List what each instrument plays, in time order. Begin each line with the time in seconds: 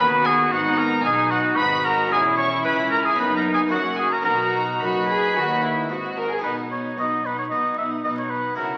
Already playing: harpsichord B3 D#4 F#4
0.00 harpsichord D#2, cello section D#2, double bass section D#2, viola section B3, violin section F#4, oboe B4
0.25 oboe G#4, violin section G#5
0.52 double bass section G#1, cello section G#2, harpsichord G#2, viola section B3, violin section D#4 F#5, oboe F#4
0.78 oboe A#4, violin section A#5
1.05 double bass section B1, harpsichord B2, cello section B2, viola section D#4, violin section D#4 G#5, oboe G#4
1.31 oboe F#4, violin section F#5
1.56 double bass section G#1, cello section G#2, harpsichord G#2, violin section F#4 B5, oboe B4
1.84 oboe A#4, violin section A#5
2.07 harpsichord C#4 E4
2.11 double bass section E1, cello section E2, harpsichord E2, viola section C#4, violin section E4 G#5, oboe G#4
2.37 oboe C#5, violin section C#6
2.65 harpsichord C#2, double bass section C#2, cello section C#2, oboe B4, violin section B5
2.91 oboe A#4, violin section A#5
3.05 oboe G#4, violin section G#5
3.14 harpsichord B3 D#4, viola section B3, violin section D#4 B5
3.18 double bass section F#1, harpsichord F#2, cello section F#2, oboe B4
3.36 oboe A#4, violin section A#5
3.53 oboe G#4, violin section G#5
3.68 harpsichord A#3 E4 F#4, oboe F#4
3.72 double bass section F#1, harpsichord F#2, cello section F#2, viola section C#4, violin section F#4 F#5
3.97 oboe G#4, violin section G#5
4.12 oboe A#4, violin section A#5
4.22 harpsichord B3 D#4 F#4, oboe A#4, violin section A#5
4.26 double bass section B1, harpsichord B2, cello section B2, viola section D#4, violin section F#4
4.79 double bass section F#1, cello section F#2, harpsichord F#2, violin section F#4 B5, oboe B4
5.09 violin section G#4
5.35 double bass section D#2, cello section D#2, harpsichord D#2, violin section F#4
5.63 violin section E4
5.89 double bass section G#1, harpsichord G#2, cello section G#2, violin section F#4
6.18 violin section A#4
6.32 violin section G#4
6.39 harpsichord B3 D#4 F#4
6.43 double bass section B1, harpsichord B2, cello section B2, viola section B3, violin section D#4 F#5, oboe B4
6.70 viola section B3, violin section D#4 F#5, oboe C#5
6.96 double bass section B1, harpsichord B2, cello section B2, viola section B3, violin section D#4 F#5, oboe D#5
7.24 viola section B3, violin section D#4 F#5, oboe B4
7.38 oboe C#5
7.50 double bass section B1, cello section B2, harpsichord B2, viola section B3, violin section D#4 F#5, oboe D#5
7.78 viola section B3, violin section D#4 F#5, oboe E5
8.04 double bass section B1, cello section B2, harpsichord B2, viola section B3, violin section D#4 F#5, oboe D#5
8.18 oboe C#5
8.30 viola section B3, violin section D#4 F#5, oboe B4
8.56 double bass section C#2, cello section C#3, harpsichord C#3 E4 F#4, viola section E4, violin section F#4 F#5, oboe A#4